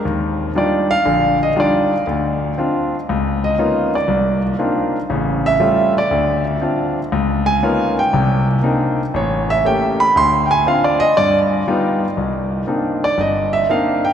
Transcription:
0.05 D#2
0.55 G3 D4 D#4 F4 D5
0.91 F5
1.06 A#1 D3
1.43 D#5
1.56 G3 D4 D#4 F4 D5
2.07 D2
2.58 C4 D4 F4
3.09 C#2
3.44 D#5
3.58 A#3 B3 C#4 D#4 F4
3.95 D5
4.08 C2
4.59 A#3 C4 D4 D#4 F4
5.10 A1 C#3
5.46 E5
5.60 G3 A3 C#4 F4
5.98 D5
6.11 D2
6.62 C4 D4 F4
7.12 C#2
7.46 G#5
7.63 A#3 B3 C#4 D#4 F4
7.99 G5
8.13 C2 C3
8.63 A#3 C4 D4 D#4
9.14 A1 C#5
9.50 E5
9.65 A3 A#3 C#4 G4 G5
10.00 B5
10.16 D2 C6
10.46 G5
10.51 G#5
10.66 C4 D4 F4 F5
10.84 D5
11.00 D#5
11.17 G2 D5
11.68 G3 B3 D#4 F4
12.17 C2
12.67 A#3 C4 D4 D#4
13.04 D5
13.18 G1 D#5
13.53 E5
13.69 A#3 C4 D4 D#4 F5
14.05 G5

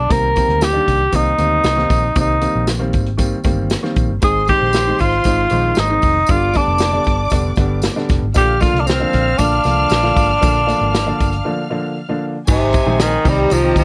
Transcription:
Already playing: D4
0.09 C2 D#3 G3 A#3 C4 A#4, kick, closed hi-hat, tambourine
0.35 D#3 G3 A#3 C4, kick, closed hi-hat, tambourine
0.49 D2, closed hi-hat
0.61 G4, snare, closed hi-hat, tambourine
0.73 D#3 G3 A#3 D4
0.88 C2, kick, closed hi-hat, tambourine
1.12 C2 D#3 G3 A#3 C4 D#4, kick, closed hi-hat, tambourine
1.38 D2 D#3 G3 A#3 C4, closed hi-hat, tambourine
1.64 C2, snare, closed hi-hat, tambourine
1.76 D#3 G3 A#3 C4, snare
1.90 A#1, kick, snare, closed hi-hat, tambourine
2.15 C2 D#3 G3 A#3 C4, kick, closed hi-hat, tambourine
2.20 D#4
2.41 D#3 G3 A#3 C4, closed hi-hat, tambourine
2.55 A#1
2.67 snare, closed hi-hat, tambourine
2.79 D#3 G3 A#3 C4
2.93 G#1, kick, closed hi-hat, tambourine
3.06 closed hi-hat
3.17 D#3 G3 A#3 C4, kick, closed hi-hat, tambourine
3.44 G1 D#3 G3 A#3 C4, kick, closed hi-hat, tambourine
3.70 snare, closed hi-hat, tambourine
3.83 D#3 G3 A#3 C4, snare
3.96 A#1, kick, closed hi-hat, tambourine
4.09 G1
4.21 G#1 D#3 G#3 C4 D#4 G#4 C5 C6, kick, closed hi-hat, tambourine
4.47 D#3 G#3 C4 D#4 G4, kick, closed hi-hat, tambourine
4.62 A#1
4.73 snare, closed hi-hat, tambourine
4.87 D#3 G#3 C4 D#4
4.99 G#1 F4, kick, closed hi-hat, tambourine
5.12 closed hi-hat
5.24 G#1 D#3 G#3 C4 D#4, kick, closed hi-hat, tambourine
5.50 A#1 D#3 G#3 C4 D#4, closed hi-hat, tambourine
5.75 G#1, snare, closed hi-hat, tambourine
5.80 D#4
5.90 D#3 G#3 C4 D#4
6.02 F1, kick, open hi-hat, tambourine
6.27 G1 D3 G3 B3 D4 D5 D6, kick, closed hi-hat, tambourine
6.31 F4
6.54 D3 G3 B3 D4, kick, closed hi-hat, tambourine
6.68 F1
6.78 snare, closed hi-hat, tambourine
6.92 D3 G3 B3 D4
7.04 G1, kick, closed hi-hat, tambourine
7.30 F1 D3 G3 B3 D4, kick, closed hi-hat, tambourine
7.56 G1 D3 G3 B3 D4, kick, closed hi-hat, tambourine
7.82 snare, closed hi-hat, tambourine
7.96 D3 G3 B3 D4, snare
8.09 F1, kick, snare, closed hi-hat, tambourine
8.22 G#1
8.34 A#1 D3 F3 A#3 D4 G4 F5 F6, kick, closed hi-hat, tambourine
8.60 D3 F3 A#3 D4 F4, kick, closed hi-hat, tambourine
8.74 C2, closed hi-hat
8.80 D4
8.86 C4, snare, closed hi-hat, tambourine
9.00 D3 F3 A#3 D4
9.13 A#1, kick, closed hi-hat, tambourine
9.38 A#1 D3 F3 A#3 D4, kick, closed hi-hat, tambourine
9.64 C2 D3 F3 A#3 D4, closed hi-hat, tambourine
9.89 A#1, snare, closed hi-hat, tambourine
10.03 D3 F3 A#3 F4, snare
10.16 G#1, kick, open hi-hat, tambourine
10.41 A#1 D3 F3 A#3 D4, kick, closed hi-hat, tambourine
10.66 D3 F3 A#3 D4, closed hi-hat, tambourine
10.81 G#1
10.94 snare, closed hi-hat, tambourine
11.06 D3 F3 A#3 D4
11.20 G1, kick, closed hi-hat, tambourine
11.32 closed hi-hat
11.45 D3 F3 A#3 D4
11.70 D3 F3 A#3 D4
12.09 D3 F3 A#3 D4
12.47 G#1 C3 D#3 G#3 C4 D#4 G#4 C5 G#5, kick, crash, tambourine
12.73 kick, ride, tambourine
12.86 A#1 D#3 G#3 C4 D#4 G#4
12.99 D#3 D#4, snare, ride, tambourine
13.23 C2 D#3 G3 C4 D#4 G4 D#5 A#5, kick, tambourine, crash
13.29 G3
13.50 C2 F3 F4, ride, tambourine
13.63 D#3 G3 C4 D#4 G4
13.76 D2 F3, kick, ride, tambourine

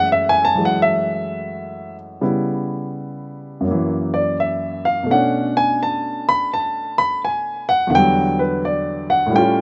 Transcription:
Already playing: F#2 E3 G#3 A3
0.12 E5
0.29 G#5
0.45 A5
0.55 E3 F#3 G#3
0.65 F#5
0.82 E5
2.21 C#3 G3 B3 E4
3.61 F#2 F#3
3.67 E3 A#3
4.14 D5
4.40 E5
4.85 F5
5.03 B2 A3
5.10 C#4 D4 F#5
5.57 G#5
5.83 A5
6.29 B5
6.53 A5
6.98 B5
7.25 G#5
7.69 F#5
7.87 E2 D3 F#5
7.95 F#3 G3 G5
8.39 B4
8.65 D5
9.10 F#5
9.27 A2 G3
9.33 A3 C#4 G5
9.38 F4

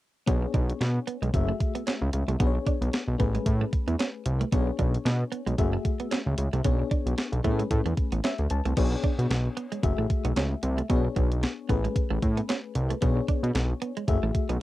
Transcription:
0.27 B1 B3 D4 G#4 C#5, kick, closed hi-hat
0.42 muted clean electric guitar stroke
0.54 B1 D4, kick, closed hi-hat
0.70 closed hi-hat
0.81 B2, muted clean electric guitar stroke, snare, closed hi-hat
1.07 B3, closed hi-hat
1.22 B1 G#3, closed hi-hat
1.33 F#1 A3 F#4 G#4 E5, kick, closed hi-hat
1.48 A3
1.60 muted clean electric guitar stroke, kick, closed hi-hat
1.75 B3, closed hi-hat
1.87 C#4, snare, closed hi-hat
2.02 C#2
2.13 C#2, muted clean electric guitar stroke, closed hi-hat
2.28 C2 A3, closed hi-hat
2.39 B1 B3 D4 G#4 B4, kick, closed hi-hat
2.47 C#5
2.55 muted clean electric guitar stroke
2.66 D4, kick, closed hi-hat
2.81 B1, closed hi-hat
2.93 muted clean electric guitar stroke, snare, closed hi-hat
3.08 B1
3.18 A1 A3 B3 C#4 G#4 B4, kick, closed hi-hat
3.35 G#3, closed hi-hat
3.46 A2, kick, closed hi-hat
3.61 A3
3.73 muted clean electric guitar stroke, kick, closed hi-hat
3.87 E2 B3, closed hi-hat
3.99 C#4, snare, closed hi-hat
4.26 C2, muted clean electric guitar stroke, closed hi-hat
4.41 A3, closed hi-hat
4.52 B1 B3 D4 G#4 C#5, kick, closed hi-hat
4.67 muted clean electric guitar stroke
4.79 B1 D4, kick, closed hi-hat
4.94 closed hi-hat
5.05 B2, muted clean electric guitar stroke, snare, closed hi-hat
5.32 B3, closed hi-hat
5.46 B1 G#3, closed hi-hat
5.58 F#1 A3 F#4 G#4 E5, kick, closed hi-hat
5.73 A3
5.85 muted clean electric guitar stroke, kick, closed hi-hat
6.00 B3, closed hi-hat
6.11 C#4, snare, closed hi-hat
6.26 C#2
6.38 C#2, muted clean electric guitar stroke, closed hi-hat
6.53 C2 A3, closed hi-hat
6.64 B1 B3 C#4 G#4 C#5, kick, closed hi-hat
6.71 D4
6.79 muted clean electric guitar stroke
6.91 D4, kick, closed hi-hat
7.06 B1, closed hi-hat
7.18 muted clean electric guitar stroke, snare, closed hi-hat
7.32 B1, closed hi-hat
7.44 A2 A3 B3 G#4 B4, kick, closed hi-hat
7.51 C#4
7.59 G#3, closed hi-hat
7.71 A2, kick, closed hi-hat
7.86 E2 A3, closed hi-hat
7.97 muted clean electric guitar stroke, kick, closed hi-hat
8.12 A1 B3, closed hi-hat
8.24 C#4 E5, snare, closed hi-hat
8.38 D2, closed hi-hat
8.50 C#2 A5, muted clean electric guitar stroke, closed hi-hat
8.65 C2 A3, closed hi-hat
8.77 B1 B3 D4 G#4 C#5, kick, closed hi-hat, crash
8.92 muted clean electric guitar stroke
9.04 D4, kick, closed hi-hat
9.19 B2, closed hi-hat
9.30 B1, muted clean electric guitar stroke, snare, closed hi-hat
9.57 B3, closed hi-hat
9.72 G#3, closed hi-hat
9.83 F#1 A3 F#4 G#4 E5, kick, closed hi-hat
9.98 A1 A3
10.10 muted clean electric guitar stroke, kick, closed hi-hat
10.25 B1 B3, closed hi-hat
10.36 C#2 C#4, snare, closed hi-hat
10.63 C2, muted clean electric guitar stroke, closed hi-hat
10.78 A3, closed hi-hat
10.89 B1 B3 C#4 G#4 C#5, kick, closed hi-hat
10.96 D4
11.05 muted clean electric guitar stroke
11.16 B1 D4, kick, closed hi-hat
11.32 closed hi-hat
11.43 muted clean electric guitar stroke, snare, closed hi-hat
11.69 A1 A3 B3 C#4 G#4 B4, kick, closed hi-hat
11.84 G#3, closed hi-hat
11.96 kick, closed hi-hat
12.11 A1 A3
12.22 A2, muted clean electric guitar stroke, kick, closed hi-hat
12.37 B3, closed hi-hat
12.49 C#4, snare, closed hi-hat
12.75 C2, muted clean electric guitar stroke, closed hi-hat
12.90 A3, closed hi-hat
13.01 B1 B3 D4 G#4 C#5, kick, closed hi-hat
13.17 muted clean electric guitar stroke
13.28 D4, kick, closed hi-hat
13.43 B2, closed hi-hat
13.55 B1, muted clean electric guitar stroke, snare, closed hi-hat
13.82 B3, closed hi-hat
13.97 G#3, closed hi-hat
14.07 F#1 A3 F#4 G#4 E5, kick, closed hi-hat
14.23 A1 A3
14.35 muted clean electric guitar stroke, kick, closed hi-hat
14.49 B1 B3, closed hi-hat

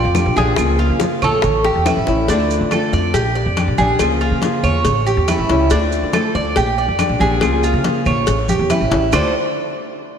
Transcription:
Already playing: F4 D5
0.05 F2
0.15 D3 G3 D4 G4, high bongo, low bongo, high conga, claves, maracas
0.26 A#1
0.36 A#1 G3 D4 G4 G#4, high bongo, high conga, maracas
0.57 C#2 C#3 F3 A#3 F4 G#4, high bongo, high conga, claves, maracas
0.79 F4, high bongo, high conga
0.90 C#3
1.00 F3 A#3 F4 G#4, high bongo, high conga, maracas
1.22 A#1 A4 C#5, high conga, low conga, claves, maracas
1.42 A1, muted nylon-string guitar stroke, high bongo, high conga, low conga, maracas
1.64 G4, high bongo, high conga
1.76 E2
1.86 E3 G3 C#4 E4, low bongo, high conga, claves, maracas
1.97 A1
2.07 A1 G3 C#4 E4, low bongo, maracas
2.28 D2 D3 A3 C4 D4 F4, cowbell, high conga, maracas
2.50 high conga, maracas
2.61 D3
2.71 D3 A3 C4 F4 A4, cowbell, high conga, claves, maracas
2.93 F2 D5, high conga, maracas
3.14 A#1 G4, muted nylon-string guitar stroke, cowbell, high conga, maracas
3.35 D5, high conga
3.46 F2
3.57 D3 G3 D4 G4, cowbell, high conga, claves, maracas
3.68 A#1
3.78 A#1 G3 D4 G4 G#4, high conga, maracas
3.99 C#2 C#3 F3 A#3 F4 G#4, cowbell, high conga, claves, maracas
4.21 F4, high conga
4.32 C#3
4.42 F3 A#3 F4 G#4, cowbell, high conga, maracas
4.64 E2 C#5, high conga, low conga, claves, maracas
4.85 A1, muted nylon-string guitar stroke, cowbell, high conga, low conga, maracas
5.07 G4, high conga, maracas
5.17 E2
5.28 E3 G3 C#4 E4, cowbell, high conga, claves, maracas
5.39 A1
5.49 C#2 G3 C#4 E4, cowbell, high conga, maracas
5.70 D2 D3 A3 C4 D4 F4, cowbell, high conga, maracas
5.92 high conga, maracas
6.03 D3
6.13 D3 A3 C4 F4 A4, cowbell, high conga, claves, maracas
6.35 D2 D5, high conga, maracas
6.56 A#1 G4, muted nylon-string guitar stroke, cowbell, high conga, maracas
6.78 D5, high conga
6.88 F2
6.99 D3 G3 D4 G4, cowbell, high conga, claves, maracas
7.10 A#1
7.19 A#1 G3 D4 G4 G#4, high conga, maracas
7.41 C#2 C#3 F3 A#3 F4 G#4, cowbell, high conga, claves, maracas
7.64 F4, high conga, maracas
7.74 C#3
7.84 F3 A#3 F4 G#4, cowbell, high conga, maracas
8.06 A#1 C#5, high conga, low conga, claves, maracas
8.26 A1, muted nylon-string guitar stroke, cowbell, high conga, maracas
8.48 G4, high conga, maracas
8.59 E2
8.69 E3 G3 C#4 E4, cowbell, high conga, claves, maracas
8.81 A1
8.90 A1 G3 C#4 E4, cowbell, low conga, maracas
9.12 D2 D3 A3 C4 D4 F4 A4 C5, low bongo, low conga, claves, maracas

